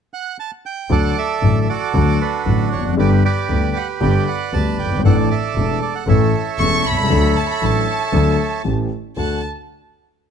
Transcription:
0.14 bandoneon F#5
0.40 bandoneon A5
0.66 bandoneon G5
0.89 double bass D2, grand piano D2 D3 F#3 A3 F#4, bandoneon A4 D5 F#5
1.18 bandoneon A4 E5
1.41 double bass A1, grand piano A1 A2 D3 F#3 A3 F#4
1.62 bandoneon E5
1.69 bandoneon F#4 A4 D5
1.94 double bass D2, grand piano D2 D3 F#3 A3 F#4
2.21 bandoneon D4 F#4 B4
2.45 double bass A1, grand piano A1 A2 D3 F#3 A3 F#4
2.72 double bass F1, bandoneon C#5
2.79 grand piano E2
2.85 grand piano F2
2.92 grand piano F#2
2.97 grand piano G1 G2 D3 G3 B3 G4, double bass G1, bandoneon G4 B4 D5
3.25 bandoneon G4 B4 D5
3.48 grand piano D2 D3 G3 B3 G4, double bass D2
3.76 bandoneon F#5
4.01 grand piano G1 G2 D3 G3 B3 G4, double bass G1, bandoneon B4 D5 G5
4.28 bandoneon F#5
4.53 double bass D2, grand piano D2 D3 G3 B3 G4, bandoneon A5
4.78 double bass G1, bandoneon G5
4.85 grand piano F#1
4.92 grand piano G1
4.99 grand piano G#1
5.03 double bass A1, grand piano A1 A2 E3 A3 D4 A4, bandoneon A4 D5 F#5
5.31 bandoneon A4 E5
5.55 double bass E1, grand piano E1 E2 E3 A3 D4 A4
5.82 bandoneon D5
5.95 bandoneon F#5
6.06 double bass A1, grand piano A1 A2 E3 A3 C#4 A4, bandoneon A4 C#5 E5
6.58 double bass E1, grand piano E1 E2 E3 A3 C#4 A4, violin section C#6
6.84 double bass C2, violin section B5
6.91 grand piano B1
6.98 grand piano C2
7.03 grand piano C#2
7.09 grand piano D2 D3 F#3 A3 D4 A4, double bass D2
7.36 violin section A5
7.49 violin section B5
7.61 grand piano A1 A2 F#3 A3 D4 A4, double bass A1, violin section A5
8.12 grand piano D2 D3 F#3 A3 D4 A4, double bass D2
8.64 grand piano A1 A2 E3 A3 C#4 G4, double bass A1
9.17 double bass D2, grand piano D2 A3 D4 F#4, bandoneon F#5, violin section A5

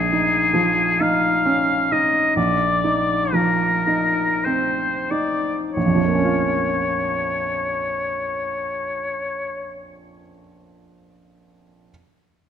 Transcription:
Already playing: grand piano A#1, oboe G#4
0.13 grand piano D#4
0.54 grand piano F3
1.00 grand piano D#4, oboe F5
1.45 grand piano C#4
1.92 grand piano D#4, oboe D#5
2.36 grand piano A#1, oboe D5
2.84 grand piano D#4
3.33 grand piano F3, oboe A#4
3.87 grand piano D#4
4.44 grand piano C4, oboe C5
5.10 grand piano D#4, oboe D5
5.72 oboe C#5
5.76 grand piano A#1
5.86 grand piano F2
5.95 grand piano F3
6.05 grand piano A#3
6.15 grand piano C#4
6.24 grand piano F4

